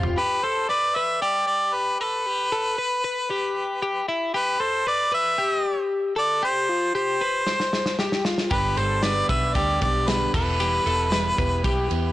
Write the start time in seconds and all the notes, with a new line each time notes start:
Already playing: F1 C4 F4 G4
0.03 floor tom
0.17 G4 B4
0.44 A4 C5
0.69 B4 D5
0.95 B4 E5
1.22 G4 D5
1.47 D5
1.73 B4
2.00 A4 B4
2.26 G4
2.52 A4
2.78 B4
3.04 B4
3.30 G4
3.82 G4
4.08 E4
4.34 G4 B4
4.60 A4 C5
4.87 B4 D5
5.12 B4 E5
5.38 G4
6.16 A4 D5
6.43 G4 C5
6.69 F4
6.95 G4 C5
7.21 B4
7.47 C5, snare
7.60 snare
7.73 snare
7.86 snare
7.99 G4, snare
8.12 snare
8.25 F4, snare
8.38 snare
8.50 G1 G2 D3 G3 B3 D4 G4 B4, kick, ride
8.77 G1 G3 B3 D4 G4 A4 C5, ride, tambourine
9.03 G2 D3 G3 B3 D4 G4 B4 D5, snare, ride, tambourine
9.29 B1 B3 D4 G4 B4 E5, kick, ride, tambourine
9.34 G3
9.54 D2 G3 B3 D4 G4 D5, kick, ride, tambourine
9.58 G4
9.81 B1 G3 B3 D4 G4 D5, kick, ride
10.07 G2 D3 G3 B3 D4 G4 B4, snare, ride, tambourine
10.33 E1 B3 E4 G4 A4 B4, kick, tambourine, crash
10.60 E3 G3 B3 E4 G4, hi-hat pedal, ride, tambourine
10.85 E1 B3 E4 G4 A4, ride, tambourine
11.10 E3 G3 B3 E4 G4 B4, snare, ride, tambourine
11.36 E1 B3 E4 G4 B4, kick, ride, tambourine
11.63 B1 G3 B3 E4 G4, kick, ride, tambourine
11.89 E2 B3 E4 G4, ride